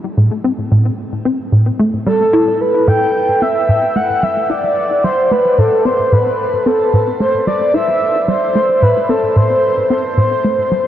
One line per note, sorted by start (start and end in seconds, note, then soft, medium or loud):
0.17 0.30 A2 medium
0.44 0.52 C4 medium
0.71 0.90 A2 medium
1.25 1.38 C4 medium
1.52 1.71 A2 medium
1.79 1.98 A3 medium
2.06 2.25 G3 medium
2.06 2.62 A4 loud
2.33 2.52 E4 medium
2.61 2.89 B4 loud
2.87 3.06 A2 medium
2.87 3.43 G5 loud
3.42 3.54 C4 medium
3.42 3.97 E5 loud
3.69 3.87 A2 medium
3.96 4.14 A3 medium
3.96 4.25 F#5 loud
4.23 4.41 G3 medium
4.23 4.43 E5 loud
4.43 4.51 E5 medium
4.50 4.69 E4 medium
4.50 5.03 D5 loud
5.04 5.11 G3 medium
5.04 5.33 C5 loud
5.31 5.38 A3 medium
5.31 5.60 B4 medium
5.58 5.70 A2 medium
5.58 5.87 A4 medium
5.85 5.92 C4 medium
5.85 6.14 C5 loud
6.12 6.31 A2 medium
6.12 6.68 B4 loud
6.66 6.79 C4 medium
6.66 7.07 A4 loud
6.93 7.12 A2 medium
7.20 7.39 A3 medium
7.20 7.45 C5 loud
7.47 7.66 G3 medium
7.47 7.72 D5 medium
7.74 7.93 E4 medium
7.74 8.24 E5 loud
8.28 8.36 G3 medium
8.28 8.84 C5 loud
8.55 8.63 A3 medium
8.82 8.95 A2 medium
8.82 9.11 B4 medium
9.09 9.17 C4 medium
9.09 9.38 A4 medium
9.36 9.55 A2 medium
9.36 9.90 C5 loud
9.90 10.03 C4 medium
9.90 10.87 C5 medium
10.17 10.36 A2 medium
10.44 10.63 A3 medium
10.71 10.87 G3 medium